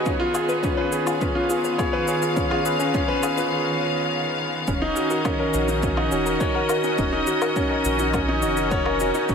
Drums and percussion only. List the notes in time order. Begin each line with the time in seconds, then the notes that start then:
0.06 kick, shaker
0.34 low woodblock, shaker
0.49 shaker
0.63 kick, shaker
0.92 shaker
1.07 low woodblock, shaker
1.21 kick, shaker
1.50 shaker
1.64 shaker
1.79 kick, low woodblock, shaker
2.08 shaker
2.22 shaker
2.37 kick, shaker
2.51 low woodblock
2.65 shaker
2.80 shaker
2.94 kick, shaker
3.23 low woodblock, shaker
3.38 shaker
4.67 kick, shaker
4.96 shaker
5.10 shaker
5.25 kick, low woodblock, shaker
5.54 shaker
5.68 shaker
5.83 kick, shaker
5.97 low woodblock
6.12 shaker
6.26 shaker
6.40 kick, shaker
6.69 low woodblock, shaker
6.84 shaker
6.98 kick, shaker
7.27 shaker
7.42 low woodblock, shaker
7.56 kick, shaker
7.85 shaker
7.99 shaker
8.14 kick, low woodblock, shaker
8.42 shaker
8.57 shaker
8.71 kick, shaker
8.86 low woodblock
9.00 shaker
9.14 shaker
9.29 kick, shaker